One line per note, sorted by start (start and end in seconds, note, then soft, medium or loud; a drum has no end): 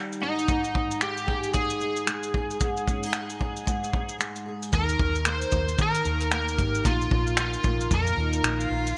0.00 2.90 D#3 medium
0.00 0.28 G3 medium
0.00 0.73 D#4 medium
0.00 0.28 G4 medium
0.12 shaker soft
0.21 0.46 G#2 medium
0.21 1.04 D#4 medium
0.39 shaker soft
0.47 1.53 G#2 medium
0.47 kick medium
0.47 shaker medium
0.64 shaker soft
0.74 1.80 D#4 medium
0.74 kick medium
0.91 shaker soft
1.01 2.05 G#3 medium
1.01 1.54 G4 medium
1.01 finger snap loud
1.01 shaker medium
1.17 shaker soft
1.27 2.33 G#4 medium
1.27 kick medium
1.43 shaker soft
1.53 2.58 G#2 medium
1.53 4.16 G#4 medium
1.53 kick medium
1.53 shaker medium
1.70 shaker medium
1.80 2.87 D#4 medium
1.80 shaker soft
1.96 shaker soft
2.06 3.12 G#3 medium
2.06 finger snap medium
2.06 shaker medium
2.23 shaker soft
2.34 3.38 G#4 medium
2.34 kick medium
2.50 shaker soft
2.60 3.64 G#2 medium
2.60 kick medium
2.60 shaker medium
2.77 shaker soft
2.87 3.03 C#4 medium
2.87 kick medium
2.87 shaker soft
3.03 3.92 D#4 soft
3.03 shaker soft
3.13 4.17 G#3 medium
3.13 finger snap loud
3.13 shaker medium
3.30 shaker soft
3.39 4.45 G#4 medium
3.39 kick medium
3.56 shaker soft
3.65 4.79 G#2 medium
3.65 kick medium
3.65 shaker medium
3.84 shaker medium
3.93 6.04 D#4 soft
3.93 kick medium
4.09 shaker soft
4.19 4.72 G#3 medium
4.19 finger snap medium
4.19 shaker medium
4.36 shaker soft
4.46 4.79 G#4 soft
4.62 shaker soft
4.72 4.95 D#2 medium
4.72 5.77 D#3 medium
4.72 5.29 A#4 medium
4.72 kick medium
4.72 shaker medium
4.89 shaker soft
4.99 5.43 D#2 medium
4.99 kick medium
5.15 shaker soft
5.25 5.51 A#3 medium
5.25 5.82 C5 medium
5.25 finger snap loud
5.25 shaker medium
5.42 shaker soft
5.51 5.74 D#2 medium
5.51 6.30 A#3 soft
5.51 kick medium
5.51 shaker soft
5.68 shaker soft
5.78 7.38 D#3 medium
5.78 6.01 D#3 medium
5.78 kick medium
5.78 shaker medium
5.82 6.30 A#4 medium
5.95 shaker medium
6.05 6.60 D#2 medium
6.05 8.17 D#4 medium
6.05 shaker soft
6.20 shaker soft
6.31 7.63 A#3 medium
6.31 6.88 A#4 medium
6.31 finger snap loud
6.31 shaker medium
6.48 shaker soft
6.57 6.80 G#1 medium
6.57 6.91 G4 medium
6.57 kick medium
6.57 shaker soft
6.75 shaker soft
6.84 7.07 A#1 medium
6.84 7.89 A#2 medium
6.84 7.39 F4 medium
6.84 kick loud
6.84 shaker medium
7.01 shaker soft
7.11 7.55 A#1 medium
7.11 kick medium
7.27 shaker soft
7.37 8.43 D#3 medium
7.37 7.94 F4 medium
7.37 finger snap medium
7.37 shaker medium
7.53 shaker soft
7.64 7.86 A#1 medium
7.64 8.98 A#3 medium
7.64 kick medium
7.64 shaker soft
7.81 shaker soft
7.91 8.13 F2 loud
7.91 8.97 A#2 medium
7.91 8.68 A#4 medium
7.91 kick medium
7.91 shaker medium
8.07 shaker medium
8.17 8.39 D#2 medium
8.17 8.98 D#4 medium
8.33 shaker soft
8.43 8.66 A#1 medium
8.43 8.98 D#3 medium
8.43 8.59 D#4 medium
8.43 finger snap loud
8.43 shaker medium
8.60 8.98 F4 loud
8.60 shaker soft
8.70 8.92 A#1 medium
8.70 8.98 F4 medium
8.87 shaker medium